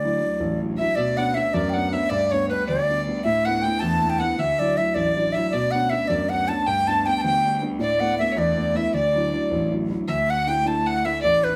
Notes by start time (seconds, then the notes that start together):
Already playing: D2 D5
0.04 F#3 D4 E4
0.22 F#3 D4 E4
0.40 A1
0.61 F#3 D4 E4
0.78 F#3 D4 E4 E5
0.95 D2 B2 D5
1.17 B3 C#4 D4 F#5
1.34 B3 C#4 D4 E5
1.53 F#2 D5
1.69 G5
1.73 B3 C#4 D4 F#5
1.92 B3 C#4 D4 E5
2.10 G2 D5
2.31 G3 B3 D4 C#5
2.49 G3 B3 D4 B4
2.68 D2 D5
2.89 G3 B3 D4
3.07 G3 B3 D4
3.24 A2 E5
3.45 A3 B3 E4 F#5
3.62 A3 B3 E4 G5
3.79 E2 A5
4.02 A3 B3 E4
4.09 G5
4.18 A3 B3 E4 F#5
4.38 D2 E5
4.59 F#3 D4 E4 D5
4.77 F#3 D4 E4 E5
4.94 A1 D5
5.16 F#3 D4 E4
5.32 F#3 D4 E4 E5
5.50 D2 B2 D5
5.71 B3 C#4 F#5
5.75 D4
5.90 B3 C#4 D4 E5
6.08 F#2 D5
6.29 B3 C#4 D4 F#5
6.48 B3 C#4 D4 A5
6.65 G2 G5
6.87 G3 B3 D4 A5
7.06 G3 B3 D4 G5
7.17 A5
7.22 D2 G5
7.44 G3 B3 D4
7.61 G3 B3 D4
7.79 A2 D5
8.00 A3 B3 E4 F#5
8.18 A3 B3 E5
8.31 C#5
8.37 E2 D5
8.57 A3 B3 E4
8.75 A3 B3 E4 E5
8.87 E5
8.94 D2 D5
9.15 F#3 D4 E4
9.33 F#3 D4 E4
9.51 A1
9.72 F#3 D4 E4
9.90 F#3 D4 E4
10.08 D2 E5
10.29 F#5
10.47 A3 D4 E4 G5
10.65 A3 D4 E4 A5
10.87 F#5
11.05 A3 D4 E4 E5
11.21 A1 D5
11.42 B4